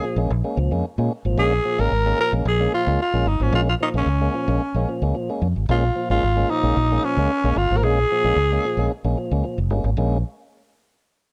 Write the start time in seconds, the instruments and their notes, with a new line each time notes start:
Already playing: tenor saxophone G#4
0.03 tonewheel organ A#2 F3
0.16 fingered electric bass A#1, tonewheel organ G#3 A#3 C#4
0.30 fingered electric bass A#1
0.44 tonewheel organ G#3 A#3 C#4
0.57 fingered electric bass C#2, tonewheel organ A#2 F3
0.71 fingered electric bass F2, tonewheel organ G#3 A#3 C#4
0.98 fingered electric bass A#2, tonewheel organ G#3 A#3 C#4
1.25 fingered electric bass G#1, tonewheel organ A#2 F3
1.37 fingered electric bass A#1, tonewheel organ G#3 A#3 C#4, tenor saxophone G#4
1.65 tonewheel organ A#2 F3
1.78 fingered electric bass G#1, tonewheel organ G#3 A#3 C#4, tenor saxophone A#4
1.91 fingered electric bass G#1
2.06 tonewheel organ G#3 A#3 C#4
2.18 tonewheel organ A#2 F3, tenor saxophone A#4
2.33 fingered electric bass A#1, tonewheel organ G#3 A#3 C#4
2.45 fingered electric bass A#1, tenor saxophone G#4
2.60 tonewheel organ G#3 A#3 C#4
2.73 tonewheel organ A#2 F3, tenor saxophone F4
2.87 fingered electric bass C#2, tonewheel organ G#3 A#3 C#4
3.02 tenor saxophone F4
3.13 fingered electric bass A#1, tonewheel organ G#3 A#3 C#4
3.26 fingered electric bass G1, tenor saxophone D#4
3.40 fingered electric bass G#1, tonewheel organ A#2 F3, tenor saxophone C#4
3.53 fingered electric bass A#1, tonewheel organ G#3 A#3 C#4, tenor saxophone F4
3.69 tenor saxophone F4
3.80 tonewheel organ A#2 F3, tenor saxophone D#4
3.94 fingered electric bass A#1, tonewheel organ G#3 A#3 C#4, tenor saxophone C#4
4.06 fingered electric bass C#2
4.21 tonewheel organ G#3 A#3 C#4
4.34 tonewheel organ A#2 F3
4.48 fingered electric bass A#1, tonewheel organ G#3 A#3 C#4
4.74 fingered electric bass A#1, tonewheel organ G#3 A#3 C#4
4.89 tonewheel organ A#2 F3
5.02 fingered electric bass C#2, tonewheel organ G#3 A#3 C#4
5.15 tonewheel organ A#2 F3
5.30 tonewheel organ G#3 A#3 C#4
5.42 fingered electric bass F2, tonewheel organ A#3 C#4
5.56 fingered electric bass G#1
5.69 fingered electric bass A#1, tonewheel organ G#3 A#3 C#4, tenor saxophone F4
5.96 tonewheel organ A#2 F3
6.10 fingered electric bass G#1, tonewheel organ G#3 A#3 C#4, tenor saxophone F4
6.23 fingered electric bass G#1
6.37 tonewheel organ G#3 A#3 C#4
6.50 tonewheel organ A#2 F3, tenor saxophone D#4
6.63 fingered electric bass A#1, tonewheel organ G#3 A#3 C#4
6.77 fingered electric bass A#1
6.91 tonewheel organ G#3 A#3 C#4
7.03 tonewheel organ A#2 F3, tenor saxophone C#4
7.17 fingered electric bass C#2, tonewheel organ G#3 A#3 C#4
7.44 fingered electric bass A#1, tonewheel organ G#3 A#3 C#4
7.56 fingered electric bass G1, tenor saxophone F4
7.71 fingered electric bass G#1, tonewheel organ A#2 F3
7.77 tenor saxophone A#4
7.83 fingered electric bass A#1, tonewheel organ G#3 A#3 C#4, tenor saxophone G#4
8.11 tonewheel organ A#2 F3
8.24 fingered electric bass A#1, tonewheel organ G#3 A#3 C#4
8.36 fingered electric bass C#2
8.52 tonewheel organ G#3 A#3 C#4
8.65 tonewheel organ A#2 F3
8.77 fingered electric bass A#1, tonewheel organ G#3 A#3 C#4
9.04 fingered electric bass A#1, tonewheel organ G#3 A#3 C#4
9.17 tonewheel organ A#2 F3
9.31 fingered electric bass C#2, tonewheel organ G#3 A#3 C#4
9.44 tonewheel organ A#2 F3
9.58 fingered electric bass F1
9.70 fingered electric bass G1, tonewheel organ G#3 A#3 C#4
9.84 fingered electric bass G#1, tonewheel organ A#3 C#4
9.97 fingered electric bass A#1, tonewheel organ G#3 A#3 C#4